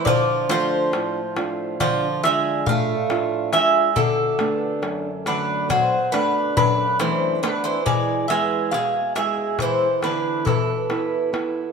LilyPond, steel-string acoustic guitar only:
\new Staff \with { instrumentName = "Steel-string acoustic guitar" } { \time 9/8 \key d \dorian \tempo 4. = 46 d8 <a d' f'>8 a,8 <a d' f'>8 d8 <f d' f'>8 a,8 <f d' f'>8 <d' f'>8 | b,8 <a b d'>8 fis,8 <fis a d'>8 b,8 <a b d'>8 fis,8 <b, a d'>8 <a b d'>8 | e8 <b gis'>8 b,8 <gis e' gis'>8 e8 <b e' b'>8 b,8 <b e' b'>8 <b e'>8 | }